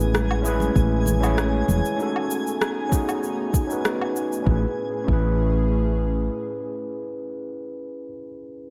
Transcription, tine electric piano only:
0.00 0.40 C#4 medium
0.00 0.41 E4 medium
0.00 0.42 G#4 medium
0.00 0.43 B4 medium
0.42 1.18 C#4 medium
0.42 1.19 E4 medium
0.42 1.20 G#4 medium
0.48 1.21 B4 medium
1.20 1.94 C#4 medium
1.20 1.95 E4 medium
1.20 1.96 G#4 medium
1.26 1.97 C#5 loud
1.96 2.87 C#4 medium
1.96 2.88 D#4 medium
1.96 2.89 F#4 medium
2.02 2.90 A4 medium
2.89 3.66 C#4 medium
2.89 3.67 D#4 medium
2.89 3.67 F#4 medium
2.95 3.68 G#4 medium
3.67 4.41 C#4 medium
3.67 4.43 D#4 medium
3.67 4.43 F#4 medium
3.73 4.44 B4 medium
4.42 4.62 C#4 medium
4.42 4.64 E4 medium
4.48 4.65 G#4 medium
4.48 4.67 B4 medium
5.04 8.07 C#4 medium
5.04 8.10 E4 medium
5.10 8.13 G#4 medium
5.10 8.16 B4 medium

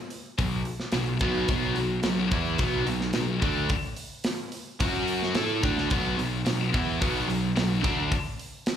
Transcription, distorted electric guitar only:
0.38 0.61 B2 medium
0.38 0.61 F#3 medium
0.93 1.16 B2 medium
0.93 1.16 F#3 medium
1.21 1.48 B2 medium
1.21 1.49 F#3 medium
1.21 1.49 B3 medium
1.49 1.75 B2 medium
1.49 1.75 F#3 medium
1.49 1.77 B3 medium
1.76 1.99 B2 medium
1.76 1.99 F#3 medium
2.03 2.26 B2 medium
2.03 2.27 F#3 medium
2.31 2.58 E3 loud
2.31 2.59 B3 loud
2.31 2.59 E4 loud
2.59 2.86 B2 medium
2.59 2.86 F#3 loud
2.59 2.87 B3 medium
2.87 3.10 B2 medium
2.87 3.10 F#3 medium
3.15 3.37 B2 medium
3.15 3.38 F#3 medium
3.42 3.69 D3 medium
3.42 3.70 A3 medium
3.42 3.70 D4 loud
4.81 5.35 F#3 medium
4.81 5.35 C#4 medium
4.81 5.36 F#4 loud
5.35 5.62 A3 medium
5.35 5.62 E4 medium
5.35 5.63 A4 medium
5.62 5.90 D3 medium
5.62 5.90 A3 medium
5.62 5.90 D4 medium
5.91 6.17 B2 medium
5.91 6.17 F#3 medium
5.91 6.18 B3 loud
6.18 6.41 B2 medium
6.18 6.41 F#3 medium
6.45 6.68 B2 medium
6.45 6.68 F#3 medium
6.73 7.00 E3 medium
6.73 7.00 B3 loud
6.73 7.00 E4 loud
7.01 7.27 B2 medium
7.01 7.27 F#3 loud
7.01 7.28 B3 loud
7.28 7.51 B2 medium
7.28 7.51 F#3 medium
7.56 7.78 B2 medium
7.56 7.79 F#3 medium
7.83 8.10 D3 medium
7.83 8.11 A3 medium
7.83 8.11 D4 loud

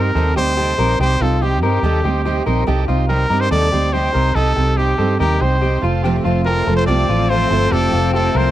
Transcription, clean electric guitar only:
0.00 0.15 A#4 medium
0.15 0.36 A4 medium
0.36 0.56 G4 medium
0.57 0.78 G4 medium
0.79 1.00 A#4 medium
1.00 1.21 G4 loud
1.21 1.42 F4 medium
1.42 1.62 G4 medium
1.63 1.84 A#4 medium
1.84 2.04 A4 medium
2.05 2.24 G4 medium
2.26 2.46 G4 medium
2.46 2.67 A#4 medium
2.67 2.88 G4 loud
2.88 3.09 F4 medium
3.09 3.29 G4 medium
3.30 3.50 A#4 medium
3.51 3.72 A4 medium
3.72 3.92 G4 medium
3.93 4.14 G4 medium
4.14 4.35 A#4 medium
4.36 4.56 A4 loud
4.56 4.76 G4 medium
4.77 4.98 G4 medium
4.99 5.20 A4 medium
5.20 5.41 A#4 medium
5.41 5.61 G4 medium
5.62 5.83 G4 medium
5.84 6.03 F4 medium
6.04 6.25 G4 loud
6.25 6.46 F4 medium
6.46 6.67 G4 medium
6.67 6.88 A4 medium
6.88 7.09 G4 medium
7.09 7.29 F4 medium
7.30 7.50 F4 medium
7.50 7.71 A4 medium
7.72 7.93 G4 loud
7.92 8.14 F4 medium
8.13 8.34 G4 medium
8.35 8.51 A#4 medium

